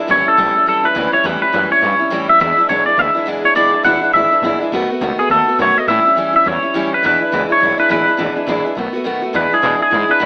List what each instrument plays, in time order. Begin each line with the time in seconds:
0.07 upright bass A1, steel-string acoustic guitar A2 E3 G3 C#4 E4, clean electric guitar C#5
0.25 steel-string acoustic guitar G3 C#4 E4, clean electric guitar A4, muted upright bass stroke
0.37 upright bass B1, steel-string acoustic guitar A2 E3 G3 C#4 E4
0.55 steel-string acoustic guitar G3 C#4 E4, muted upright bass stroke
0.66 upright bass C#2, steel-string acoustic guitar E3 G3 C#4 E4, clean electric guitar A4
0.83 steel-string acoustic guitar G3 C#4 E4, clean electric guitar B4, muted upright bass stroke
0.94 upright bass D2, steel-string acoustic guitar A2 E3 G3 C#4 E4
1.12 steel-string acoustic guitar G3 C#4 E4, clean electric guitar C#5, muted upright bass stroke
1.24 upright bass E2, steel-string acoustic guitar A2 E3 G3 C#4 E4, clean electric guitar B4
1.42 steel-string acoustic guitar G3 C#4 E4, clean electric guitar B4
1.53 upright bass F#2, steel-string acoustic guitar A2 E3 G3 C#4 E4
1.71 steel-string acoustic guitar G3 C#4 E4, clean electric guitar C#5, muted upright bass stroke
1.81 upright bass G2, steel-string acoustic guitar E3 G3 C#4 E4
1.99 steel-string acoustic guitar G3 C#4 E4, muted upright bass stroke
2.10 upright bass F#2, steel-string acoustic guitar A2 E3 G3 C#4 E4
2.28 steel-string acoustic guitar G3 C#4 E4, clean electric guitar E5, muted upright bass stroke
2.40 steel-string acoustic guitar E2 B2 E3 G#3 D4 E4, upright bass E2, clean electric guitar E5
2.56 steel-string acoustic guitar E3 G#3 D4 E4
2.69 upright bass B1, steel-string acoustic guitar E2 B2 E3 G#3 D4 E4, clean electric guitar C#5
2.86 steel-string acoustic guitar E3 G#3 D4 E4, clean electric guitar D5, muted upright bass stroke
2.97 upright bass D2, steel-string acoustic guitar E3 G#3 D4 E4, clean electric guitar E5
3.15 steel-string acoustic guitar E3 G#3 D4 E4, muted upright bass stroke
3.26 upright bass C#2, steel-string acoustic guitar E2 B2 E3 G#3 D4 E4
3.44 steel-string acoustic guitar E3 G#3 D4 E4, clean electric guitar C#5, muted upright bass stroke
3.55 upright bass B1, steel-string acoustic guitar E2 B2 E3 G#3 D4 E4, clean electric guitar D5
3.73 steel-string acoustic guitar E3 G#3 D4 E4, muted upright bass stroke
3.83 upright bass E1, steel-string acoustic guitar E2 B2 E3 G#3 D4 E4, clean electric guitar F#5
4.01 steel-string acoustic guitar E3 G#3 D4 E4, muted upright bass stroke
4.13 upright bass G#1, steel-string acoustic guitar E3 G#3 D4 E4, clean electric guitar E5
4.31 steel-string acoustic guitar E3 G#3 D4 E4, muted upright bass stroke
4.42 upright bass A#1, steel-string acoustic guitar E2 B2 E3 G#3 D4 E4
4.60 steel-string acoustic guitar E3 G#3 D4 E4, muted upright bass stroke
4.72 upright bass B1, steel-string acoustic guitar B2 D#3 A3 B3 F#4
4.90 steel-string acoustic guitar A3 B3 F#4
5.01 upright bass C#2, steel-string acoustic guitar B2 D#3 A3 B3 F#4
5.18 steel-string acoustic guitar A3 B3 F#4, clean electric guitar G#4, muted upright bass stroke
5.30 upright bass D#2, steel-string acoustic guitar D#3 A3 B3 F#4, clean electric guitar A4
5.48 steel-string acoustic guitar A3 B3 F#4
5.59 upright bass F#2, steel-string acoustic guitar B2 D#3 A3 B3 F#4, clean electric guitar C#5
5.76 steel-string acoustic guitar A3 B3 F#4, clean electric guitar D#5, muted upright bass stroke
5.87 upright bass A2, steel-string acoustic guitar A2 E3 G3 C#4 E4, clean electric guitar E5
6.05 steel-string acoustic guitar G3 C#4 E4
6.15 upright bass G2, steel-string acoustic guitar A2 E3 G3 C#4 E4
6.33 steel-string acoustic guitar G3 C#4 E4, clean electric guitar E5, muted upright bass stroke
6.44 upright bass E2, steel-string acoustic guitar E3 G3 C#4 E4, clean electric guitar C#5
6.62 steel-string acoustic guitar G3 C#4 E4
6.74 upright bass D2, steel-string acoustic guitar A2 E3 G3 C#4 E4
6.91 steel-string acoustic guitar G3 C#4 E4, clean electric guitar B4
7.03 steel-string acoustic guitar E2 B2 E3 G#3 D4 E4, upright bass E2, clean electric guitar B4
7.21 steel-string acoustic guitar E3 G#3 D4 E4, muted upright bass stroke
7.31 upright bass C#2, steel-string acoustic guitar E2 B2 E3 G#3 D4 E4
7.49 steel-string acoustic guitar E3 G#3 D4 E4, clean electric guitar C#5, muted upright bass stroke
7.60 upright bass B1, steel-string acoustic guitar E3 G#3 D4 E4
7.77 steel-string acoustic guitar E3 G#3 D4 E4, clean electric guitar B4, muted upright bass stroke
7.89 upright bass A1, steel-string acoustic guitar E2 B2 E3 G#3 D4 E4, clean electric guitar B4
8.06 steel-string acoustic guitar E3 G#3 D4 E4
8.17 upright bass G#1, steel-string acoustic guitar E2 B2 E3 G#3 D4 E4
8.35 steel-string acoustic guitar E3 G#3 D4 E4, muted upright bass stroke
8.47 upright bass A1, steel-string acoustic guitar E2 B2 E3 G#3 D4 E4
8.65 steel-string acoustic guitar E3 G#3 D4 E4
8.75 upright bass B1, steel-string acoustic guitar D#3 A3 B3 F#4
8.93 steel-string acoustic guitar A3 B3 F#4, muted upright bass stroke
9.04 upright bass D#2, steel-string acoustic guitar B2 D#3 A3 B3 F#4
9.22 steel-string acoustic guitar A3 B3 F#4, muted upright bass stroke
9.33 steel-string acoustic guitar E2 B2 E3 G#3 D4 E4, upright bass E2, clean electric guitar B4
9.51 steel-string acoustic guitar E3 G#3 D4 E4, clean electric guitar G#4, muted upright bass stroke
9.62 steel-string acoustic guitar E2 B2 E3 G#3 D4 E4, upright bass B2
9.79 steel-string acoustic guitar E3 G#3 D4 E4, clean electric guitar G#4, muted upright bass stroke
9.91 upright bass G#2, steel-string acoustic guitar E3 G#3 D4 E4
10.08 steel-string acoustic guitar E3 G#3 D4 E4, clean electric guitar B4, muted upright bass stroke
10.19 steel-string acoustic guitar E2 B2 E3 G#3 D4 E4, upright bass F#2